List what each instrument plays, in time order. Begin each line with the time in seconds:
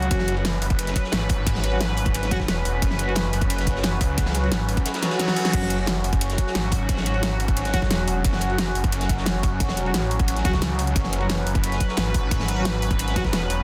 Already playing: brass ensemble F#3 C#4 F#4, analog synth pad F#3 C#4
0.02 closed hi-hat
0.11 detuned saw bass F#1, analog synth pad B4, kick, closed hi-hat, ride
0.19 snare
0.28 closed hi-hat, ride
0.36 brass ensemble F#3 C#4 F#4, ride
0.45 snare, closed hi-hat, ride
0.62 detuned saw bass F#1, open hi-hat, ride
0.70 kick, closed hi-hat, ride
0.79 closed hi-hat, ride
0.87 snare, closed hi-hat
0.96 kick, closed hi-hat, ride
1.04 snare
1.12 detuned saw bass G#1, snare, closed hi-hat, ride
1.29 kick, open hi-hat, ride
1.47 kick, closed hi-hat, ride
1.55 snare
1.64 closed hi-hat, ride
1.72 brass ensemble F#3 C#4 F#4, ride
1.80 snare, closed hi-hat, ride
1.97 open hi-hat, ride
2.05 kick, closed hi-hat, ride
2.14 closed hi-hat, ride
2.23 snare, closed hi-hat
2.31 brass ensemble F#3 C#4 F#4, kick, snare, closed hi-hat, ride
2.40 kick, snare
2.48 detuned saw bass E1, snare, closed hi-hat, ride
2.65 detuned saw bass E1, open hi-hat, ride
2.82 detuned saw bass F#1, kick, closed hi-hat, ride
2.91 snare
2.99 closed hi-hat, ride
3.08 brass ensemble F#3 C#4 F#4, ride
3.15 snare, closed hi-hat, ride
3.33 detuned saw bass F#1, open hi-hat, ride
3.41 kick, closed hi-hat, ride
3.50 closed hi-hat, ride
3.59 snare, closed hi-hat
3.67 detuned saw bass F#1, kick, closed hi-hat, ride
3.76 snare
3.83 snare, closed hi-hat, ride
4.01 detuned saw bass C#2, kick, open hi-hat, ride
4.18 kick, closed hi-hat, ride
4.26 snare
4.34 closed hi-hat, ride
4.43 brass ensemble F#3 C#4 F#4, ride
4.52 detuned saw bass G#1, snare, closed hi-hat, ride
4.68 open hi-hat, ride
4.77 kick, closed hi-hat, ride
4.86 snare, closed hi-hat, ride, reverse cymbal
4.94 snare, closed hi-hat, ride
5.02 snare, closed hi-hat, ride
5.11 brass ensemble F#3 C#4 F#4, snare, ride
5.19 snare, closed hi-hat, ride
5.28 snare, ride
5.36 snare, open hi-hat, ride
5.44 snare, closed hi-hat, ride
5.53 detuned saw bass F#1, analog synth pad F#4, kick, closed hi-hat, crash, ride
5.62 snare
5.70 closed hi-hat, ride
5.79 brass ensemble F#3 C#4 F#4, ride
5.86 snare, closed hi-hat, ride
6.04 detuned saw bass F#1, open hi-hat, ride
6.13 kick, closed hi-hat, ride
6.21 closed hi-hat, ride
6.29 snare, closed hi-hat
6.38 kick, closed hi-hat, ride
6.47 snare
6.55 detuned saw bass G#1, snare, closed hi-hat, ride
6.71 kick, open hi-hat, ride
6.89 kick, closed hi-hat, ride
6.97 snare
7.06 closed hi-hat, ride
7.14 brass ensemble F#3 C#4 F#4, ride
7.23 snare, closed hi-hat, ride
7.40 open hi-hat, ride
7.48 kick, closed hi-hat, ride
7.57 closed hi-hat, ride
7.65 snare, closed hi-hat
7.73 brass ensemble F#3 C#4 F#4, kick, snare, closed hi-hat, ride
7.82 kick, snare
7.90 detuned saw bass E1, snare, closed hi-hat, ride
8.08 detuned saw bass E1, open hi-hat, ride
8.24 detuned saw bass F#1, kick, closed hi-hat, ride
8.33 snare
8.41 closed hi-hat, ride
8.50 brass ensemble F#3 C#4 F#4, ride
8.58 snare, closed hi-hat, ride
8.75 detuned saw bass F#1, open hi-hat, ride
8.84 kick, closed hi-hat, ride
8.92 closed hi-hat, ride
9.00 snare, closed hi-hat
9.09 detuned saw bass F#1, kick, closed hi-hat, ride
9.17 snare
9.26 snare, closed hi-hat, ride
9.43 kick, open hi-hat, ride
9.60 kick, closed hi-hat, ride
9.68 detuned saw bass F1, snare
9.77 closed hi-hat, ride
9.86 brass ensemble F#3 C#4 F#4, ride
9.94 detuned saw bass A1, snare, closed hi-hat, ride
10.11 open hi-hat, ride
10.20 kick, closed hi-hat, ride
10.28 closed hi-hat, ride
10.36 snare, closed hi-hat
10.45 detuned saw bass C#2, brass ensemble F#3 C#4 F#4, kick, snare, closed hi-hat, ride
10.53 kick, snare
10.62 snare, closed hi-hat, ride
10.79 open hi-hat, ride
10.87 closed hi-hat
10.96 detuned saw bass F#1, analog synth pad B4, kick, closed hi-hat, ride
11.04 snare
11.13 closed hi-hat, ride
11.21 brass ensemble F#3 C#4 F#4, ride
11.29 snare, closed hi-hat, ride
11.47 detuned saw bass F#1, open hi-hat, ride
11.55 kick, closed hi-hat, ride
11.63 closed hi-hat, ride
11.72 snare, closed hi-hat
11.80 kick, closed hi-hat, ride
11.89 snare
11.97 detuned saw bass G#1, snare, closed hi-hat, ride
12.14 kick, open hi-hat, ride
12.31 kick, closed hi-hat, ride
12.39 snare
12.48 closed hi-hat, ride
12.57 brass ensemble F#3 C#4 F#4, ride
12.65 snare, closed hi-hat, ride
12.82 open hi-hat, ride
12.91 kick, closed hi-hat, ride
12.99 closed hi-hat, ride
13.08 snare, closed hi-hat
13.16 brass ensemble F#3 C#4 F#4, kick, snare, closed hi-hat, ride
13.24 kick, snare
13.33 detuned saw bass E1, snare, closed hi-hat, ride
13.50 detuned saw bass E1, open hi-hat, ride